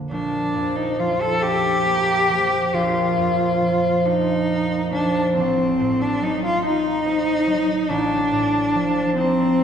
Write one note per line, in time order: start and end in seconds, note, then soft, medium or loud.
0.00 0.14 F2 soft
0.00 0.15 D3 soft
0.00 1.84 A#3 soft
0.00 1.41 D4 soft
0.11 2.72 A#1 soft
0.11 0.77 D4 medium
0.56 3.16 F2 soft
0.76 1.01 D#4 medium
0.99 2.28 F3 soft
0.99 1.23 F4 medium
1.21 1.44 A4 medium
1.42 4.04 D4 soft
1.42 2.76 G4 medium
1.86 4.49 A#3 soft
2.29 3.60 F3 soft
2.73 5.39 A#1 soft
2.73 4.07 F4 medium
3.17 5.39 F2 soft
3.61 4.91 F3 soft
4.06 5.39 D4 soft
4.06 4.92 D#4 medium
4.50 5.39 A#3 soft
4.92 5.39 F3 soft
4.92 5.35 D4 medium
5.37 7.88 A1 soft
5.37 6.03 C4 medium
5.79 7.93 A2 soft
6.01 6.25 D4 medium
6.20 7.45 F#3 soft
6.20 6.44 D#4 medium
6.45 6.64 F4 medium
6.63 9.16 D#4 soft
6.63 7.92 D#4 medium
7.04 9.60 C4 soft
7.46 7.92 F#3 soft
7.89 9.64 A1 medium
7.89 9.16 D4 medium
8.31 9.64 A2 soft
8.75 9.64 F3 soft
9.16 9.64 C4 medium
9.16 9.64 D#4 soft